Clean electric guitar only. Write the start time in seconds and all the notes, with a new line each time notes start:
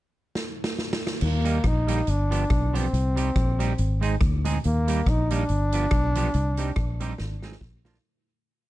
1.45 G3 A#3 D#4 G4
1.64 muted clean electric guitar stroke
1.87 G3 A#3 D#4 G4
2.30 F3 B3 D4 G4
2.49 muted clean electric guitar stroke
2.73 F3 B3 D4 G4
3.16 G3 C4 D#4 G4
3.36 muted clean electric guitar stroke
3.59 G3 C4 D#4 G4
4.01 G#3 C4 D#4 G#4
4.20 muted clean electric guitar stroke
4.45 G#3 C4 D#4 G#4
4.88 G3 A#3 D#4 G4
5.07 muted clean electric guitar stroke
5.31 G3 A#3 D#4 G4
5.74 F3 B3 D4 G4
5.92 muted clean electric guitar stroke
6.16 F3 B3 D4 G4
6.58 G3 C4 D#4 G4
6.77 muted clean electric guitar stroke
7.00 G3 C4 D#4 G4
7.43 G#3 C4 D#4 G#4
7.85 F3 A#3 D4 F4